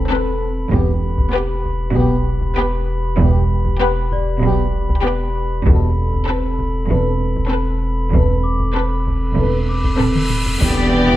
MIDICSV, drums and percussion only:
0, 0, Header, 1, 2, 480
1, 0, Start_track
1, 0, Key_signature, 1, "minor"
1, 0, Tempo, 618557
1, 553, Time_signature, 4, 2, 24, 8
1, 8665, End_track
2, 0, Start_track
2, 0, Title_t, "Taiko and cinematic ensemble drums"
2, 553, Note_on_c, 9, 41, 86
2, 631, Note_off_c, 9, 41, 0
2, 916, Note_on_c, 9, 41, 66
2, 994, Note_off_c, 9, 41, 0
2, 1275, Note_on_c, 9, 41, 60
2, 1353, Note_off_c, 9, 41, 0
2, 1514, Note_on_c, 9, 41, 66
2, 1591, Note_off_c, 9, 41, 0
2, 1873, Note_on_c, 9, 41, 69
2, 1951, Note_off_c, 9, 41, 0
2, 2472, Note_on_c, 9, 41, 81
2, 2550, Note_off_c, 9, 41, 0
2, 2834, Note_on_c, 9, 41, 68
2, 2912, Note_off_c, 9, 41, 0
2, 3193, Note_on_c, 9, 41, 65
2, 3271, Note_off_c, 9, 41, 0
2, 3437, Note_on_c, 9, 41, 62
2, 3514, Note_off_c, 9, 41, 0
2, 3794, Note_on_c, 9, 41, 67
2, 3872, Note_off_c, 9, 41, 0
2, 4397, Note_on_c, 9, 41, 80
2, 4475, Note_off_c, 9, 41, 0
2, 4755, Note_on_c, 9, 41, 66
2, 4833, Note_off_c, 9, 41, 0
2, 5113, Note_on_c, 9, 41, 63
2, 5191, Note_off_c, 9, 41, 0
2, 5353, Note_on_c, 9, 41, 60
2, 5431, Note_off_c, 9, 41, 0
2, 5710, Note_on_c, 9, 41, 67
2, 5788, Note_off_c, 9, 41, 0
2, 6311, Note_on_c, 9, 41, 81
2, 6389, Note_off_c, 9, 41, 0
2, 6669, Note_on_c, 9, 41, 64
2, 6746, Note_off_c, 9, 41, 0
2, 7034, Note_on_c, 9, 41, 61
2, 7112, Note_off_c, 9, 41, 0
2, 7274, Note_on_c, 9, 41, 56
2, 7352, Note_off_c, 9, 41, 0
2, 7635, Note_on_c, 9, 41, 70
2, 7713, Note_off_c, 9, 41, 0
2, 7756, Note_on_c, 9, 45, 74
2, 7834, Note_off_c, 9, 45, 0
2, 7879, Note_on_c, 9, 47, 72
2, 7956, Note_off_c, 9, 47, 0
2, 7993, Note_on_c, 9, 45, 78
2, 8070, Note_off_c, 9, 45, 0
2, 8118, Note_on_c, 9, 43, 74
2, 8196, Note_off_c, 9, 43, 0
2, 8235, Note_on_c, 9, 41, 89
2, 8313, Note_off_c, 9, 41, 0
2, 8665, End_track
0, 0, End_of_file